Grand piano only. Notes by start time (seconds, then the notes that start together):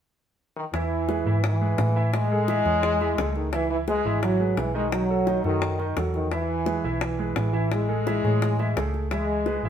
0.74 E3 E4 E5
1.08 G#3 G#4 B4
1.26 E3 E4 E5
1.61 G#3 G#4 B4
1.96 E3 E4 E5
2.32 G#3 G#4 A4
2.48 E3 E4 E5
2.66 E3 G#4 C#5
3.01 E3 E4 E5
3.19 A3 G#4 A4
3.53 E3 E4 E5
3.87 G#3 G#4 B4
4.06 E3 E4 E5
4.40 G#3 G#4 B4
4.74 D#3 D#4 D#5
5.10 F#3 F#4 A4
5.26 D#3 D#4 D#5
5.44 F#3 F#4 A4
5.79 D#3 D#4 D#5
5.96 F#3 F#4 A4
6.31 E3 E4 E5
6.66 G#3 G#4 B4
6.84 E3 E4 E5
7.19 G#3 G#4 B4
7.53 E3 E4 E5
7.89 G#3 G#4 A4
8.07 E3 E4 E5
8.24 E3 G#4 C#5
8.60 E3 E4 E5
8.76 A3 G#4 A4
9.11 E3 E4 E5
9.46 G#3 G#4 B4
9.64 E3 E4 E5